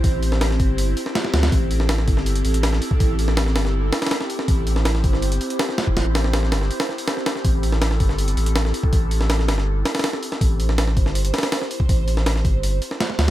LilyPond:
<<
  \new Staff \with { instrumentName = "Analog synth pad" } { \time 4/4 \key a \minor \tempo 4 = 162 << { c''1 | a'1~ | a'1 | c''1~ |
c''1 | a'1~ | a'1 | c''1~ |
c''1 | } \\ { <c' e' g'>1~ | <c' e' g'>1~ | <c' e' g'>1~ | <c' e' g'>1~ |
<c' e' g'>1~ | <c' e' g'>1~ | <c' e' g'>1~ | <c' e' g'>1~ |
<c' e' g'>1 | } >> }
  \new Staff \with { instrumentName = "Sub bass" } { \clef bass \time 4/4 \key a \minor a,,4. g,,4 r4 d,8 | a,,4. g,,4 a,,4 r8 | a,,4. g,,4 r4. | a,,4. g,,4 r4. |
a,,4. g,,8 r2 | a,,4. g,,4 a,,4 r8 | a,,4. g,,4 r4. | a,,4. g,,4 r4. |
a,,4. g,,4 r4 d,8 | }
  \new DrumStaff \with { instrumentName = "Drums" } \drummode { \time 4/4 <hho bd>8 hho16 sn16 <hho sn>16 sn16 <hho bd>8 hho8 hho16 sn16 <hho sn>16 sn16 <hho sn>16 <hho sn>16 | <hho bd>8 hho16 sn16 <hho sn>16 sn16 <hho bd>16 sn16 hho16 hh16 hho16 hh16 <hho sn>16 sn16 hho16 bd16 | <hho bd>8 hho16 sn16 <hho sn>16 sn16 <hho sn>16 sn16 r8 <hho sn>16 <hho sn>32 <hho sn>32 <hho sn>16 sn16 hho16 sn16 | <hho bd>8 hho16 sn16 <hho sn>16 sn16 <hho bd>16 sn16 hho16 hh16 hho16 hh16 <hho sn>16 sn16 <hho sn>16 bd16 |
<hho sn>8 <hho sn>16 sn16 <hho sn>16 sn16 <hho sn>16 sn16 hho16 <hho sn>16 sn16 hho16 <hho sn>16 sn16 <hho sn>16 sn16 | <hho bd>8 hho16 sn16 <hho sn>16 sn16 <hho bd>16 sn16 hho16 hh16 hho16 hh16 <hho sn>16 sn16 hho16 bd16 | <hho bd>8 hho16 sn16 <hho sn>16 sn16 <hho sn>16 sn16 r8 <hho sn>16 <hho sn>32 <hho sn>32 <hho sn>16 sn16 hho16 sn16 | <hho bd>8 hho16 sn16 <hho sn>16 sn16 <hho bd>16 sn16 hho16 hh16 <hho sn>32 <hho sn>32 <hho sn>16 <hho sn>16 sn16 hho16 bd16 |
<hho bd>8 hho16 sn16 <hho sn>16 sn16 <hho bd>8 hho8 hho16 sn16 <hho sn>16 sn16 <hho sn>8 | }
>>